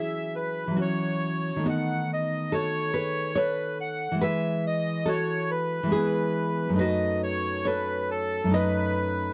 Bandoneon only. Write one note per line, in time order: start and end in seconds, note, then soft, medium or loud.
0.00 0.35 E5 medium
0.36 0.79 B4 medium
0.81 1.67 C#5 medium
1.69 2.11 F#5 medium
2.13 2.54 D#5 medium
2.54 3.37 C#5 medium
3.37 3.78 B4 medium
3.81 4.23 F#5 medium
4.23 4.65 E5 medium
4.67 5.09 D#5 medium
5.09 5.50 C#5 medium
5.51 6.80 B4 medium
6.79 7.22 D#5 medium
7.23 7.67 C#5 medium
7.66 8.10 B4 medium
8.11 8.54 A4 medium
8.54 9.33 B4 medium